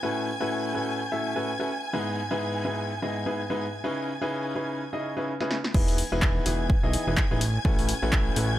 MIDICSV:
0, 0, Header, 1, 5, 480
1, 0, Start_track
1, 0, Key_signature, 4, "major"
1, 0, Tempo, 476190
1, 30, Time_signature, 4, 2, 24, 8
1, 8658, End_track
2, 0, Start_track
2, 0, Title_t, "String section"
2, 0, Program_c, 0, 48
2, 0, Note_on_c, 0, 80, 77
2, 0, Note_on_c, 0, 92, 80
2, 5310, Note_off_c, 0, 80, 0
2, 5310, Note_off_c, 0, 92, 0
2, 5789, Note_on_c, 0, 80, 83
2, 5790, Note_on_c, 0, 92, 86
2, 8658, Note_off_c, 0, 80, 0
2, 8658, Note_off_c, 0, 92, 0
2, 8658, End_track
3, 0, Start_track
3, 0, Title_t, "Grand piano"
3, 0, Program_c, 1, 0
3, 30, Note_on_c, 1, 45, 82
3, 30, Note_on_c, 1, 61, 77
3, 30, Note_on_c, 1, 64, 74
3, 30, Note_on_c, 1, 66, 77
3, 30, Note_on_c, 1, 69, 76
3, 30, Note_on_c, 1, 71, 94
3, 286, Note_off_c, 1, 45, 0
3, 286, Note_off_c, 1, 61, 0
3, 286, Note_off_c, 1, 64, 0
3, 286, Note_off_c, 1, 66, 0
3, 286, Note_off_c, 1, 69, 0
3, 286, Note_off_c, 1, 71, 0
3, 408, Note_on_c, 1, 45, 86
3, 408, Note_on_c, 1, 61, 77
3, 408, Note_on_c, 1, 64, 80
3, 408, Note_on_c, 1, 66, 82
3, 408, Note_on_c, 1, 69, 77
3, 408, Note_on_c, 1, 71, 92
3, 725, Note_off_c, 1, 69, 0
3, 726, Note_off_c, 1, 45, 0
3, 726, Note_off_c, 1, 61, 0
3, 726, Note_off_c, 1, 64, 0
3, 726, Note_off_c, 1, 66, 0
3, 726, Note_off_c, 1, 71, 0
3, 750, Note_on_c, 1, 45, 73
3, 750, Note_on_c, 1, 61, 68
3, 750, Note_on_c, 1, 64, 66
3, 750, Note_on_c, 1, 66, 68
3, 750, Note_on_c, 1, 69, 68
3, 750, Note_on_c, 1, 71, 79
3, 1006, Note_off_c, 1, 45, 0
3, 1006, Note_off_c, 1, 61, 0
3, 1006, Note_off_c, 1, 64, 0
3, 1006, Note_off_c, 1, 66, 0
3, 1006, Note_off_c, 1, 69, 0
3, 1006, Note_off_c, 1, 71, 0
3, 1128, Note_on_c, 1, 45, 73
3, 1128, Note_on_c, 1, 61, 65
3, 1128, Note_on_c, 1, 66, 65
3, 1128, Note_on_c, 1, 76, 81
3, 1129, Note_on_c, 1, 64, 65
3, 1129, Note_on_c, 1, 69, 65
3, 1327, Note_off_c, 1, 45, 0
3, 1327, Note_off_c, 1, 61, 0
3, 1327, Note_off_c, 1, 64, 0
3, 1327, Note_off_c, 1, 66, 0
3, 1327, Note_off_c, 1, 69, 0
3, 1327, Note_off_c, 1, 76, 0
3, 1368, Note_on_c, 1, 45, 74
3, 1368, Note_on_c, 1, 61, 70
3, 1368, Note_on_c, 1, 64, 67
3, 1368, Note_on_c, 1, 66, 69
3, 1368, Note_on_c, 1, 69, 71
3, 1368, Note_on_c, 1, 71, 85
3, 1514, Note_off_c, 1, 45, 0
3, 1514, Note_off_c, 1, 61, 0
3, 1514, Note_off_c, 1, 64, 0
3, 1514, Note_off_c, 1, 69, 0
3, 1515, Note_off_c, 1, 66, 0
3, 1515, Note_off_c, 1, 71, 0
3, 1608, Note_on_c, 1, 61, 80
3, 1608, Note_on_c, 1, 64, 74
3, 1608, Note_on_c, 1, 66, 70
3, 1608, Note_on_c, 1, 69, 74
3, 1608, Note_on_c, 1, 71, 89
3, 1698, Note_off_c, 1, 61, 0
3, 1698, Note_off_c, 1, 64, 0
3, 1698, Note_off_c, 1, 66, 0
3, 1698, Note_off_c, 1, 69, 0
3, 1698, Note_off_c, 1, 71, 0
3, 1949, Note_on_c, 1, 44, 84
3, 1949, Note_on_c, 1, 59, 77
3, 1949, Note_on_c, 1, 63, 80
3, 1949, Note_on_c, 1, 64, 79
3, 1949, Note_on_c, 1, 68, 75
3, 1949, Note_on_c, 1, 71, 91
3, 2205, Note_off_c, 1, 44, 0
3, 2205, Note_off_c, 1, 59, 0
3, 2205, Note_off_c, 1, 63, 0
3, 2205, Note_off_c, 1, 64, 0
3, 2205, Note_off_c, 1, 68, 0
3, 2205, Note_off_c, 1, 71, 0
3, 2328, Note_on_c, 1, 44, 85
3, 2328, Note_on_c, 1, 59, 77
3, 2328, Note_on_c, 1, 63, 81
3, 2328, Note_on_c, 1, 64, 80
3, 2328, Note_on_c, 1, 68, 81
3, 2328, Note_on_c, 1, 71, 94
3, 2645, Note_off_c, 1, 44, 0
3, 2645, Note_off_c, 1, 63, 0
3, 2645, Note_off_c, 1, 64, 0
3, 2645, Note_off_c, 1, 68, 0
3, 2645, Note_off_c, 1, 71, 0
3, 2646, Note_off_c, 1, 59, 0
3, 2670, Note_on_c, 1, 44, 74
3, 2670, Note_on_c, 1, 59, 68
3, 2670, Note_on_c, 1, 63, 68
3, 2670, Note_on_c, 1, 64, 68
3, 2670, Note_on_c, 1, 68, 67
3, 2670, Note_on_c, 1, 71, 81
3, 2926, Note_off_c, 1, 44, 0
3, 2926, Note_off_c, 1, 59, 0
3, 2926, Note_off_c, 1, 63, 0
3, 2926, Note_off_c, 1, 64, 0
3, 2926, Note_off_c, 1, 68, 0
3, 2926, Note_off_c, 1, 71, 0
3, 3048, Note_on_c, 1, 59, 65
3, 3048, Note_on_c, 1, 63, 67
3, 3048, Note_on_c, 1, 64, 65
3, 3048, Note_on_c, 1, 68, 63
3, 3049, Note_on_c, 1, 44, 71
3, 3049, Note_on_c, 1, 75, 78
3, 3247, Note_off_c, 1, 44, 0
3, 3247, Note_off_c, 1, 59, 0
3, 3247, Note_off_c, 1, 63, 0
3, 3247, Note_off_c, 1, 64, 0
3, 3247, Note_off_c, 1, 68, 0
3, 3247, Note_off_c, 1, 75, 0
3, 3288, Note_on_c, 1, 59, 69
3, 3288, Note_on_c, 1, 63, 70
3, 3288, Note_on_c, 1, 68, 69
3, 3288, Note_on_c, 1, 71, 80
3, 3289, Note_on_c, 1, 44, 72
3, 3289, Note_on_c, 1, 64, 69
3, 3434, Note_off_c, 1, 59, 0
3, 3434, Note_off_c, 1, 63, 0
3, 3434, Note_off_c, 1, 68, 0
3, 3434, Note_off_c, 1, 71, 0
3, 3435, Note_off_c, 1, 44, 0
3, 3435, Note_off_c, 1, 64, 0
3, 3529, Note_on_c, 1, 44, 79
3, 3529, Note_on_c, 1, 59, 72
3, 3529, Note_on_c, 1, 63, 75
3, 3529, Note_on_c, 1, 64, 73
3, 3529, Note_on_c, 1, 68, 71
3, 3529, Note_on_c, 1, 71, 87
3, 3675, Note_off_c, 1, 44, 0
3, 3675, Note_off_c, 1, 59, 0
3, 3675, Note_off_c, 1, 63, 0
3, 3675, Note_off_c, 1, 64, 0
3, 3675, Note_off_c, 1, 68, 0
3, 3675, Note_off_c, 1, 71, 0
3, 3870, Note_on_c, 1, 61, 80
3, 3870, Note_on_c, 1, 63, 78
3, 3870, Note_on_c, 1, 64, 78
3, 3870, Note_on_c, 1, 68, 80
3, 3870, Note_on_c, 1, 71, 91
3, 3871, Note_on_c, 1, 49, 85
3, 4126, Note_off_c, 1, 49, 0
3, 4126, Note_off_c, 1, 61, 0
3, 4126, Note_off_c, 1, 63, 0
3, 4126, Note_off_c, 1, 64, 0
3, 4126, Note_off_c, 1, 68, 0
3, 4126, Note_off_c, 1, 71, 0
3, 4249, Note_on_c, 1, 49, 87
3, 4249, Note_on_c, 1, 61, 79
3, 4249, Note_on_c, 1, 63, 78
3, 4249, Note_on_c, 1, 64, 76
3, 4249, Note_on_c, 1, 68, 77
3, 4249, Note_on_c, 1, 71, 97
3, 4566, Note_off_c, 1, 49, 0
3, 4566, Note_off_c, 1, 61, 0
3, 4566, Note_off_c, 1, 63, 0
3, 4566, Note_off_c, 1, 64, 0
3, 4566, Note_off_c, 1, 68, 0
3, 4566, Note_off_c, 1, 71, 0
3, 4589, Note_on_c, 1, 64, 68
3, 4589, Note_on_c, 1, 71, 81
3, 4590, Note_on_c, 1, 49, 72
3, 4590, Note_on_c, 1, 61, 67
3, 4590, Note_on_c, 1, 63, 66
3, 4590, Note_on_c, 1, 68, 69
3, 4845, Note_off_c, 1, 61, 0
3, 4845, Note_off_c, 1, 64, 0
3, 4845, Note_off_c, 1, 68, 0
3, 4845, Note_off_c, 1, 71, 0
3, 4846, Note_off_c, 1, 49, 0
3, 4846, Note_off_c, 1, 63, 0
3, 4968, Note_on_c, 1, 49, 69
3, 4968, Note_on_c, 1, 63, 66
3, 4968, Note_on_c, 1, 64, 66
3, 4968, Note_on_c, 1, 68, 65
3, 4968, Note_on_c, 1, 75, 81
3, 4969, Note_on_c, 1, 61, 65
3, 5167, Note_off_c, 1, 49, 0
3, 5167, Note_off_c, 1, 61, 0
3, 5167, Note_off_c, 1, 63, 0
3, 5167, Note_off_c, 1, 64, 0
3, 5167, Note_off_c, 1, 68, 0
3, 5167, Note_off_c, 1, 75, 0
3, 5208, Note_on_c, 1, 49, 74
3, 5208, Note_on_c, 1, 61, 68
3, 5208, Note_on_c, 1, 63, 68
3, 5208, Note_on_c, 1, 64, 71
3, 5208, Note_on_c, 1, 68, 68
3, 5208, Note_on_c, 1, 71, 83
3, 5354, Note_off_c, 1, 64, 0
3, 5354, Note_off_c, 1, 68, 0
3, 5355, Note_off_c, 1, 49, 0
3, 5355, Note_off_c, 1, 61, 0
3, 5355, Note_off_c, 1, 63, 0
3, 5355, Note_off_c, 1, 71, 0
3, 5449, Note_on_c, 1, 49, 79
3, 5449, Note_on_c, 1, 61, 74
3, 5449, Note_on_c, 1, 63, 74
3, 5449, Note_on_c, 1, 64, 72
3, 5449, Note_on_c, 1, 68, 75
3, 5449, Note_on_c, 1, 71, 86
3, 5595, Note_off_c, 1, 49, 0
3, 5595, Note_off_c, 1, 61, 0
3, 5595, Note_off_c, 1, 63, 0
3, 5595, Note_off_c, 1, 64, 0
3, 5595, Note_off_c, 1, 68, 0
3, 5595, Note_off_c, 1, 71, 0
3, 5790, Note_on_c, 1, 63, 83
3, 5790, Note_on_c, 1, 68, 82
3, 5791, Note_on_c, 1, 52, 86
3, 5791, Note_on_c, 1, 59, 83
3, 5791, Note_on_c, 1, 64, 80
3, 5791, Note_on_c, 1, 71, 97
3, 6046, Note_off_c, 1, 52, 0
3, 6046, Note_off_c, 1, 59, 0
3, 6046, Note_off_c, 1, 63, 0
3, 6046, Note_off_c, 1, 64, 0
3, 6046, Note_off_c, 1, 68, 0
3, 6046, Note_off_c, 1, 71, 0
3, 6169, Note_on_c, 1, 52, 94
3, 6169, Note_on_c, 1, 59, 86
3, 6169, Note_on_c, 1, 63, 84
3, 6169, Note_on_c, 1, 64, 83
3, 6169, Note_on_c, 1, 68, 83
3, 6169, Note_on_c, 1, 71, 104
3, 6486, Note_off_c, 1, 52, 0
3, 6486, Note_off_c, 1, 59, 0
3, 6486, Note_off_c, 1, 63, 0
3, 6486, Note_off_c, 1, 64, 0
3, 6486, Note_off_c, 1, 68, 0
3, 6486, Note_off_c, 1, 71, 0
3, 6510, Note_on_c, 1, 52, 82
3, 6510, Note_on_c, 1, 59, 73
3, 6510, Note_on_c, 1, 63, 70
3, 6510, Note_on_c, 1, 64, 73
3, 6510, Note_on_c, 1, 68, 73
3, 6510, Note_on_c, 1, 71, 86
3, 6766, Note_off_c, 1, 52, 0
3, 6766, Note_off_c, 1, 59, 0
3, 6766, Note_off_c, 1, 63, 0
3, 6766, Note_off_c, 1, 64, 0
3, 6766, Note_off_c, 1, 68, 0
3, 6766, Note_off_c, 1, 71, 0
3, 6889, Note_on_c, 1, 52, 77
3, 6889, Note_on_c, 1, 59, 68
3, 6889, Note_on_c, 1, 63, 71
3, 6889, Note_on_c, 1, 64, 69
3, 6889, Note_on_c, 1, 68, 68
3, 6889, Note_on_c, 1, 75, 87
3, 7087, Note_off_c, 1, 52, 0
3, 7087, Note_off_c, 1, 59, 0
3, 7087, Note_off_c, 1, 63, 0
3, 7087, Note_off_c, 1, 64, 0
3, 7087, Note_off_c, 1, 68, 0
3, 7087, Note_off_c, 1, 75, 0
3, 7129, Note_on_c, 1, 52, 77
3, 7129, Note_on_c, 1, 59, 72
3, 7129, Note_on_c, 1, 63, 74
3, 7129, Note_on_c, 1, 64, 74
3, 7129, Note_on_c, 1, 68, 73
3, 7129, Note_on_c, 1, 71, 89
3, 7275, Note_off_c, 1, 52, 0
3, 7275, Note_off_c, 1, 59, 0
3, 7275, Note_off_c, 1, 63, 0
3, 7275, Note_off_c, 1, 64, 0
3, 7275, Note_off_c, 1, 68, 0
3, 7275, Note_off_c, 1, 71, 0
3, 7369, Note_on_c, 1, 45, 87
3, 7369, Note_on_c, 1, 59, 77
3, 7369, Note_on_c, 1, 63, 80
3, 7369, Note_on_c, 1, 64, 77
3, 7369, Note_on_c, 1, 68, 81
3, 7369, Note_on_c, 1, 71, 94
3, 7458, Note_off_c, 1, 45, 0
3, 7458, Note_off_c, 1, 59, 0
3, 7458, Note_off_c, 1, 63, 0
3, 7458, Note_off_c, 1, 64, 0
3, 7458, Note_off_c, 1, 68, 0
3, 7458, Note_off_c, 1, 71, 0
3, 7711, Note_on_c, 1, 45, 89
3, 7711, Note_on_c, 1, 61, 81
3, 7711, Note_on_c, 1, 64, 84
3, 7711, Note_on_c, 1, 66, 84
3, 7711, Note_on_c, 1, 69, 80
3, 7711, Note_on_c, 1, 71, 99
3, 7966, Note_off_c, 1, 45, 0
3, 7966, Note_off_c, 1, 61, 0
3, 7966, Note_off_c, 1, 64, 0
3, 7966, Note_off_c, 1, 66, 0
3, 7966, Note_off_c, 1, 69, 0
3, 7966, Note_off_c, 1, 71, 0
3, 8089, Note_on_c, 1, 45, 93
3, 8089, Note_on_c, 1, 61, 87
3, 8089, Note_on_c, 1, 64, 86
3, 8089, Note_on_c, 1, 66, 86
3, 8089, Note_on_c, 1, 69, 85
3, 8089, Note_on_c, 1, 71, 103
3, 8406, Note_off_c, 1, 45, 0
3, 8406, Note_off_c, 1, 61, 0
3, 8406, Note_off_c, 1, 64, 0
3, 8406, Note_off_c, 1, 66, 0
3, 8406, Note_off_c, 1, 69, 0
3, 8406, Note_off_c, 1, 71, 0
3, 8431, Note_on_c, 1, 45, 80
3, 8431, Note_on_c, 1, 61, 72
3, 8431, Note_on_c, 1, 64, 71
3, 8431, Note_on_c, 1, 66, 73
3, 8431, Note_on_c, 1, 69, 72
3, 8431, Note_on_c, 1, 71, 87
3, 8658, Note_off_c, 1, 45, 0
3, 8658, Note_off_c, 1, 61, 0
3, 8658, Note_off_c, 1, 64, 0
3, 8658, Note_off_c, 1, 66, 0
3, 8658, Note_off_c, 1, 69, 0
3, 8658, Note_off_c, 1, 71, 0
3, 8658, End_track
4, 0, Start_track
4, 0, Title_t, "Analog synth bass"
4, 0, Program_c, 2, 38
4, 5790, Note_on_c, 2, 28, 101
4, 6085, Note_off_c, 2, 28, 0
4, 6169, Note_on_c, 2, 28, 95
4, 6449, Note_off_c, 2, 28, 0
4, 6510, Note_on_c, 2, 28, 103
4, 6805, Note_off_c, 2, 28, 0
4, 6889, Note_on_c, 2, 35, 99
4, 7024, Note_off_c, 2, 35, 0
4, 7129, Note_on_c, 2, 28, 90
4, 7264, Note_off_c, 2, 28, 0
4, 7369, Note_on_c, 2, 33, 86
4, 7649, Note_off_c, 2, 33, 0
4, 7710, Note_on_c, 2, 33, 105
4, 8005, Note_off_c, 2, 33, 0
4, 8089, Note_on_c, 2, 33, 95
4, 8369, Note_off_c, 2, 33, 0
4, 8431, Note_on_c, 2, 33, 106
4, 8658, Note_off_c, 2, 33, 0
4, 8658, End_track
5, 0, Start_track
5, 0, Title_t, "Drums"
5, 5448, Note_on_c, 9, 38, 51
5, 5549, Note_off_c, 9, 38, 0
5, 5550, Note_on_c, 9, 38, 75
5, 5651, Note_off_c, 9, 38, 0
5, 5689, Note_on_c, 9, 38, 75
5, 5789, Note_off_c, 9, 38, 0
5, 5790, Note_on_c, 9, 36, 119
5, 5790, Note_on_c, 9, 49, 103
5, 5891, Note_off_c, 9, 36, 0
5, 5891, Note_off_c, 9, 49, 0
5, 5928, Note_on_c, 9, 46, 62
5, 6029, Note_off_c, 9, 46, 0
5, 6030, Note_on_c, 9, 46, 105
5, 6131, Note_off_c, 9, 46, 0
5, 6270, Note_on_c, 9, 36, 109
5, 6272, Note_on_c, 9, 39, 123
5, 6371, Note_off_c, 9, 36, 0
5, 6372, Note_off_c, 9, 39, 0
5, 6510, Note_on_c, 9, 46, 105
5, 6611, Note_off_c, 9, 46, 0
5, 6750, Note_on_c, 9, 36, 121
5, 6851, Note_off_c, 9, 36, 0
5, 6990, Note_on_c, 9, 46, 108
5, 7091, Note_off_c, 9, 46, 0
5, 7231, Note_on_c, 9, 36, 106
5, 7232, Note_on_c, 9, 39, 122
5, 7331, Note_off_c, 9, 36, 0
5, 7332, Note_off_c, 9, 39, 0
5, 7470, Note_on_c, 9, 46, 110
5, 7571, Note_off_c, 9, 46, 0
5, 7711, Note_on_c, 9, 36, 126
5, 7811, Note_off_c, 9, 36, 0
5, 7848, Note_on_c, 9, 46, 64
5, 7949, Note_off_c, 9, 46, 0
5, 7950, Note_on_c, 9, 46, 114
5, 8050, Note_off_c, 9, 46, 0
5, 8190, Note_on_c, 9, 36, 108
5, 8192, Note_on_c, 9, 39, 127
5, 8291, Note_off_c, 9, 36, 0
5, 8292, Note_off_c, 9, 39, 0
5, 8430, Note_on_c, 9, 46, 112
5, 8531, Note_off_c, 9, 46, 0
5, 8658, End_track
0, 0, End_of_file